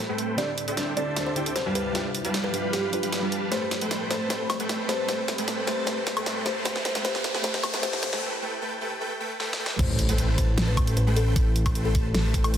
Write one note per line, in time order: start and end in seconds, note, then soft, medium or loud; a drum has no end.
0.00 0.35 A2 medium
0.00 0.35 G3 medium
0.00 0.35 A3 medium
0.00 0.35 C4 medium
0.00 0.36 C4 medium
0.00 0.35 G4 medium
0.00 0.35 B5 medium
0.00 0.36 B5 medium
0.09 0.36 A3 loud
0.09 0.36 A4 medium
0.09 0.36 B4 medium
0.09 0.36 C5 medium
0.09 0.36 G5 loud
0.18 closed hi-hat medium
0.36 0.93 D3 medium
0.36 0.94 C4 medium
0.36 0.49 D4 loud
0.36 0.95 E4 medium
0.36 0.95 G4 medium
0.36 0.49 A4 medium
0.36 0.49 C5 medium
0.36 0.57 D5 loud
0.36 0.49 E5 medium
0.36 0.49 G5 loud
0.36 snare medium
0.36 closed hi-hat medium
0.58 closed hi-hat medium
0.68 0.95 D4 medium
0.68 0.94 A4 medium
0.68 0.94 C5 medium
0.68 0.94 E5 medium
0.68 0.94 G5 medium
0.68 closed hi-hat medium
0.77 snare medium
0.77 closed hi-hat medium
0.96 1.08 D3 medium
0.96 1.08 C4 medium
0.96 1.34 D4 medium
0.96 1.09 E4 medium
0.96 1.09 G4 medium
0.96 1.34 A4 medium
0.96 1.34 C5 medium
0.96 1.16 D5 medium
0.96 1.34 E5 medium
0.96 1.34 A5 medium
0.96 closed hi-hat medium
1.16 snare medium
1.16 closed hi-hat medium
1.27 1.45 C5 medium
1.35 1.47 D3 loud
1.35 1.48 C4 medium
1.35 1.53 D4 medium
1.35 1.48 E4 medium
1.35 1.48 G4 loud
1.35 1.53 A4 medium
1.35 1.53 C5 medium
1.35 1.53 E5 medium
1.35 1.53 G5 medium
1.35 closed hi-hat medium
1.46 closed hi-hat medium
1.56 1.69 C5 medium
1.56 snare medium
1.56 closed hi-hat medium
1.66 1.93 G3 loud
1.66 1.93 G4 medium
1.66 1.93 B4 medium
1.66 1.93 F5 medium
1.66 1.93 A5 loud
1.75 3.50 G2 medium
1.75 3.50 F3 medium
1.75 1.88 B4 medium
1.75 6.61 B5 medium
1.75 closed hi-hat medium
1.93 2.50 G3 medium
1.93 2.06 G3 loud
1.93 2.51 D4 medium
1.93 2.52 F4 medium
1.93 2.06 G4 medium
1.93 2.06 B4 medium
1.93 2.52 B4 loud
1.93 2.06 F5 medium
1.93 2.06 A5 loud
1.93 snare medium
1.93 closed hi-hat medium
2.15 closed hi-hat medium
2.25 2.51 G3 medium
2.25 2.51 G4 medium
2.25 2.51 B4 medium
2.25 2.51 F5 medium
2.25 2.51 A5 medium
2.25 closed hi-hat medium
2.34 snare medium
2.34 closed hi-hat medium
2.44 2.63 B4 medium
2.53 2.90 G3 medium
2.53 2.91 G3 medium
2.53 2.91 D4 medium
2.53 2.91 F4 medium
2.53 2.91 G4 medium
2.53 2.91 B4 medium
2.53 2.91 F5 medium
2.53 2.91 B5 medium
2.53 closed hi-hat medium
2.73 2.86 G4 medium
2.73 snare medium
2.73 closed hi-hat medium
2.92 3.20 G3 loud
2.92 3.20 D4 loud
2.92 3.20 F4 loud
2.92 3.21 B4 loud
2.92 closed hi-hat medium
3.03 3.20 G3 loud
3.03 3.20 G4 medium
3.03 3.20 B4 medium
3.03 3.20 F5 medium
3.03 3.20 B5 loud
3.03 closed hi-hat medium
3.12 snare medium
3.12 closed hi-hat medium
3.22 3.33 G3 medium
3.22 3.49 G3 medium
3.22 3.34 D4 medium
3.22 3.34 F4 medium
3.22 3.49 G4 medium
3.22 3.49 B4 medium
3.22 3.34 B4 medium
3.22 3.49 F5 medium
3.22 3.49 A5 loud
3.32 closed hi-hat medium
3.50 6.62 A2 medium
3.50 6.62 G3 medium
3.50 4.07 A3 medium
3.50 3.63 A3 medium
3.50 6.62 C4 medium
3.50 4.08 G4 medium
3.50 3.63 A4 medium
3.50 3.63 B4 medium
3.50 4.09 B4 medium
3.50 3.63 C5 medium
3.50 3.71 C5 medium
3.50 3.63 G5 loud
3.50 snare medium
3.50 closed hi-hat medium
3.50 riser medium
3.54 4.09 C5 medium
3.71 snare medium
3.71 closed hi-hat medium
3.81 4.08 A3 medium
3.81 4.08 A4 medium
3.81 4.08 B4 medium
3.81 4.08 C5 medium
3.81 4.08 G5 medium
3.81 closed hi-hat medium
3.91 snare medium
3.91 closed hi-hat medium
4.10 4.22 A3 medium
4.10 4.29 A3 medium
4.10 4.22 G4 medium
4.10 4.29 A4 medium
4.10 4.29 B4 medium
4.10 4.22 B4 medium
4.10 4.29 C5 medium
4.10 4.23 C5 medium
4.10 4.29 A5 medium
4.10 snare medium
4.10 closed hi-hat medium
4.28 4.86 A3 medium
4.28 4.41 A3 medium
4.28 4.86 G4 medium
4.28 4.41 A4 medium
4.28 4.41 B4 medium
4.28 4.87 B4 medium
4.28 4.49 C5 medium
4.28 4.41 C5 medium
4.28 4.41 G5 loud
4.28 snare medium
4.28 closed hi-hat medium
4.32 4.88 C5 medium
4.50 snare medium
4.50 closed hi-hat medium
4.50 high woodblock medium
4.60 4.87 A3 medium
4.60 4.87 A4 medium
4.60 4.87 B4 medium
4.60 4.87 C5 medium
4.60 4.87 G5 medium
4.60 closed hi-hat medium
4.69 snare medium
4.69 closed hi-hat medium
4.88 5.00 A3 medium
4.88 5.07 A3 medium
4.88 5.00 G4 medium
4.88 5.07 A4 medium
4.88 5.07 B4 medium
4.88 5.01 B4 medium
4.88 5.07 C5 medium
4.88 5.01 C5 medium
4.88 5.07 A5 medium
4.88 snare medium
4.88 closed hi-hat medium
5.07 5.64 A3 medium
5.07 5.19 A3 medium
5.07 5.65 G4 medium
5.07 5.19 A4 medium
5.07 5.19 B4 medium
5.07 5.66 B4 medium
5.07 5.27 C5 medium
5.07 5.19 C5 medium
5.07 5.66 C5 medium
5.07 5.19 G5 loud
5.07 snare medium
5.07 closed hi-hat medium
5.28 snare medium
5.28 closed hi-hat medium
5.38 5.65 A3 medium
5.38 5.65 A4 medium
5.38 5.65 B4 medium
5.38 5.65 C5 medium
5.38 5.65 G5 medium
5.38 closed hi-hat medium
5.48 snare medium
5.48 closed hi-hat medium
5.66 5.79 A3 medium
5.66 5.86 A3 medium
5.66 5.79 G4 medium
5.66 5.86 A4 medium
5.66 5.86 B4 medium
5.66 5.79 B4 medium
5.66 5.85 C5 medium
5.66 5.86 C5 medium
5.66 5.80 C5 medium
5.66 5.86 A5 medium
5.66 snare medium
5.66 closed hi-hat medium
5.85 6.43 A3 medium
5.85 5.98 A3 medium
5.85 6.43 G4 medium
5.85 5.98 A4 medium
5.85 5.98 B4 medium
5.85 6.44 B4 medium
5.85 6.06 C5 loud
5.85 5.98 C5 medium
5.85 5.98 G5 loud
5.85 snare medium
5.85 closed hi-hat medium
5.89 6.45 C5 medium
6.07 snare medium
6.07 closed hi-hat medium
6.17 6.44 A3 medium
6.17 6.44 A4 medium
6.17 6.44 B4 medium
6.17 6.44 C5 medium
6.17 6.44 G5 medium
6.17 closed hi-hat medium
6.17 high woodblock medium
6.26 snare medium
6.26 closed hi-hat medium
6.45 6.57 A3 medium
6.45 6.64 A3 medium
6.45 6.57 G4 medium
6.45 6.64 A4 medium
6.45 6.64 B4 medium
6.45 6.58 B4 medium
6.45 6.64 C5 medium
6.45 6.58 C5 medium
6.45 6.64 A5 medium
6.45 snare medium
6.45 closed hi-hat medium
6.63 7.01 A3 medium
6.63 6.76 A3 loud
6.63 7.03 G4 medium
6.63 6.76 A4 medium
6.63 6.76 B4 medium
6.63 7.03 B4 medium
6.63 6.84 C5 loud
6.63 6.76 C5 medium
6.63 7.04 C5 medium
6.63 6.76 G5 loud
6.63 snare medium
6.63 closed hi-hat medium
6.76 snare medium
6.85 snare medium
6.85 closed hi-hat medium
6.95 7.03 A3 medium
6.95 7.03 A4 medium
6.95 7.03 B4 medium
6.95 7.03 C5 medium
6.95 7.03 G5 medium
6.95 snare medium
6.95 closed hi-hat medium
7.02 7.41 A3 medium
7.02 7.16 A3 loud
7.02 7.42 G4 medium
7.02 7.16 A4 medium
7.02 7.16 B4 medium
7.02 7.43 B4 medium
7.02 7.24 C5 loud
7.02 7.16 C5 medium
7.02 7.16 G5 loud
7.02 snare loud
7.02 closed hi-hat medium
7.06 7.43 C5 medium
7.15 snare medium
7.24 snare medium
7.24 closed hi-hat medium
7.34 7.42 A3 medium
7.34 7.42 A4 medium
7.34 7.42 B4 medium
7.34 7.42 C5 medium
7.34 7.42 G5 medium
7.34 snare medium
7.42 7.80 A3 medium
7.42 7.55 A3 loud
7.42 7.81 G4 medium
7.42 7.55 A4 medium
7.42 7.55 B4 medium
7.42 7.82 B4 medium
7.42 7.63 C5 loud
7.42 7.55 C5 medium
7.42 7.83 C5 medium
7.42 7.55 G5 loud
7.42 snare medium
7.42 closed hi-hat medium
7.54 snare medium
7.63 snare loud
7.63 closed hi-hat medium
7.63 high woodblock medium
7.74 7.82 A3 medium
7.74 7.82 A4 medium
7.74 7.82 B4 medium
7.74 7.82 C5 medium
7.74 7.82 G5 medium
7.74 snare medium
7.74 closed hi-hat medium
7.81 8.20 A3 medium
7.81 7.94 A3 loud
7.81 8.20 G4 medium
7.81 7.94 A4 medium
7.81 7.94 B4 medium
7.81 8.21 B4 medium
7.81 8.02 C5 loud
7.81 7.94 C5 medium
7.81 7.94 G5 loud
7.81 snare loud
7.81 closed hi-hat medium
7.85 8.22 C5 medium
7.93 snare medium
8.03 snare loud
8.03 closed hi-hat medium
8.13 8.21 A3 medium
8.13 8.21 A4 medium
8.13 8.21 B4 medium
8.13 8.21 G5 medium
8.13 snare medium
8.22 8.33 A3 loud
8.22 8.33 A4 medium
8.22 8.33 B4 medium
8.22 8.33 G5 loud
8.42 8.53 A3 loud
8.42 8.53 A4 medium
8.42 8.53 B4 medium
8.42 8.53 G5 loud
8.61 8.72 A3 loud
8.61 8.72 A4 medium
8.61 8.72 B4 medium
8.61 8.72 G5 loud
8.81 8.92 A3 loud
8.81 8.92 A4 medium
8.81 8.92 B4 medium
8.81 8.92 G5 loud
9.01 9.12 A3 loud
9.01 9.12 A4 medium
9.01 9.12 B4 medium
9.01 9.12 G5 loud
9.20 9.31 A3 loud
9.20 9.31 A4 medium
9.20 9.31 B4 medium
9.20 9.31 G5 loud
9.40 9.51 A3 loud
9.40 9.51 A4 loud
9.40 9.51 B4 medium
9.40 9.51 G5 loud
9.40 snare medium
9.53 snare medium
9.59 9.70 A3 loud
9.59 9.70 A4 medium
9.59 9.70 B4 medium
9.59 9.70 G5 loud
9.66 snare loud
9.79 12.58 A1 medium
9.79 9.90 A3 loud
9.79 9.90 A4 medium
9.79 9.90 B4 medium
9.79 9.98 C5 loud
9.79 9.90 C5 medium
9.79 9.90 G5 loud
9.79 kick loud
9.79 closed hi-hat medium
9.79 crash loud
9.79 impact medium
9.99 closed hi-hat medium
10.09 10.36 A3 medium
10.09 10.36 A4 medium
10.09 10.36 B4 medium
10.09 10.36 C5 medium
10.09 10.36 G5 medium
10.09 closed hi-hat medium
10.18 closed hi-hat medium
10.38 10.75 A3 medium
10.38 10.75 A4 medium
10.38 10.75 B4 medium
10.38 10.57 C5 medium
10.38 10.75 C5 medium
10.38 10.75 A5 medium
10.38 kick medium
10.38 closed hi-hat medium
10.58 snare loud
10.58 closed hi-hat medium
10.68 10.87 B4 medium
10.77 10.94 A3 medium
10.77 10.94 A4 medium
10.77 10.94 B4 medium
10.77 10.94 C5 medium
10.77 10.94 G5 medium
10.77 kick loud
10.77 closed hi-hat medium
10.77 high woodblock medium
10.87 closed hi-hat medium
10.97 11.10 B4 medium
10.97 closed hi-hat medium
11.07 11.34 A3 loud
11.07 11.34 A4 medium
11.07 11.34 B4 medium
11.07 11.34 C5 medium
11.07 11.34 G5 loud
11.16 11.29 A4 medium
11.16 closed hi-hat medium
11.36 11.47 A3 loud
11.36 11.47 A4 medium
11.36 11.47 B4 medium
11.36 11.47 C5 medium
11.36 11.47 G5 loud
11.36 kick loud
11.36 closed hi-hat medium
11.56 closed hi-hat medium
11.66 11.93 A3 medium
11.66 11.93 A4 medium
11.66 11.93 B4 medium
11.66 11.93 C5 medium
11.66 11.93 G5 medium
11.66 kick loud
11.66 closed hi-hat medium
11.66 high woodblock medium
11.75 closed hi-hat medium
11.85 12.04 A4 medium
11.95 12.32 A3 medium
11.95 12.32 A4 medium
11.95 12.32 B4 medium
11.95 12.32 C5 medium
11.95 12.32 A5 medium
11.95 kick loud
11.95 closed hi-hat medium
12.14 12.27 A4 medium
12.14 snare loud
12.14 closed hi-hat medium
12.34 12.51 A3 medium
12.34 12.51 A4 medium
12.34 12.51 B4 medium
12.34 12.51 C5 medium
12.34 12.51 G5 medium
12.34 kick medium
12.34 closed hi-hat medium
12.44 closed hi-hat medium
12.44 high woodblock medium
12.54 closed hi-hat medium